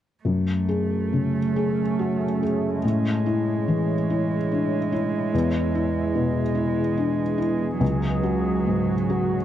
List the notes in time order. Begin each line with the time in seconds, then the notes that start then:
0.24 F#2 A3 C#4 G#4
0.69 G#4
1.13 C#3
1.56 G#4
1.99 F#4
2.43 G#4
2.82 A2 G#3 E4 C#5
3.26 E4
3.68 E3
4.10 E4
4.52 D4
4.92 E4
5.33 E2 B3 G#4
5.75 E4
6.15 B2
6.55 E4
6.97 D4
7.38 E4
7.80 C#2 F#3 C#4 F#4
8.23 F#4
8.67 G#2
9.10 F#4